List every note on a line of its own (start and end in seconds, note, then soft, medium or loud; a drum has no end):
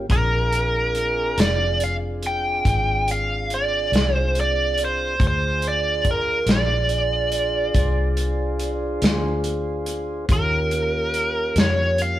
0.09 1.33 A#1 medium
0.09 5.16 C4 medium
0.09 5.16 D4 medium
0.09 5.16 F4 medium
0.09 5.16 G#4 medium
0.09 1.40 A#4 medium
0.09 kick loud
0.09 closed hi-hat medium
0.53 closed hi-hat medium
0.95 closed hi-hat medium
1.38 2.61 F1 medium
1.38 1.83 D5 medium
1.38 snare loud
1.38 closed hi-hat medium
1.80 1.95 F5 medium
1.80 closed hi-hat medium
2.23 closed hi-hat medium
2.27 3.11 G5 medium
2.65 3.89 G#1 medium
2.65 kick medium
2.65 closed hi-hat medium
3.08 3.53 F5 medium
3.08 closed hi-hat medium
3.50 4.16 D5 medium
3.50 closed hi-hat medium
3.92 5.16 C2 medium
3.92 snare loud
3.92 closed hi-hat medium
4.16 4.39 C5 medium
4.35 closed hi-hat medium
4.41 4.81 D5 medium
4.78 closed hi-hat medium
4.85 5.25 C5 medium
5.20 6.44 D2 medium
5.20 10.26 D4 medium
5.20 10.26 F4 medium
5.20 10.26 G#4 medium
5.20 10.26 C5 medium
5.20 kick loud
5.20 closed hi-hat medium
5.27 5.67 C5 medium
5.62 closed hi-hat medium
5.68 6.09 D5 medium
6.05 kick medium
6.05 closed hi-hat medium
6.11 6.51 A#4 medium
6.46 7.70 A#1 medium
6.46 snare loud
6.46 closed hi-hat medium
6.51 9.00 D5 medium
6.89 closed hi-hat medium
7.32 closed hi-hat medium
7.74 8.98 C2 medium
7.74 kick medium
7.74 closed hi-hat medium
8.17 closed hi-hat medium
8.59 closed hi-hat medium
9.02 10.25 D2 medium
9.02 snare loud
9.02 closed hi-hat medium
9.44 closed hi-hat medium
9.86 closed hi-hat medium
10.29 11.52 D#2 medium
10.29 12.19 A#3 medium
10.29 12.19 C#4 medium
10.29 12.19 F4 medium
10.29 12.19 G4 medium
10.29 11.62 A#4 medium
10.29 kick loud
10.29 closed hi-hat medium
10.71 closed hi-hat medium
11.14 closed hi-hat soft
11.56 12.19 F2 medium
11.56 12.01 C#5 medium
11.56 snare loud
11.56 closed hi-hat medium
11.98 12.19 F5 medium
11.98 closed hi-hat medium